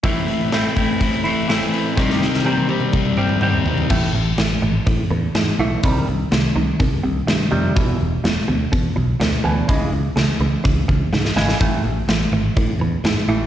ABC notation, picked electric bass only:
X:1
M:4/4
L:1/8
Q:1/4=125
K:C
V:1 name="Picked electric bass" clef=bass
z8 | z8 | A,,, A,,, A,,, ^G,,, A,, E,, ^G,, B,,, | C,, C,, C,, C,, C,, C,, G,, F,, |
E,,, E,,, E,,, D,, E,, B,,, D,, D,, | ^C,, C,, C,, C,, C,, C,, ^G,, ^G,,, | A,,, A,,, A,,, ^G,,, A,, E,, ^G,, A,,, |]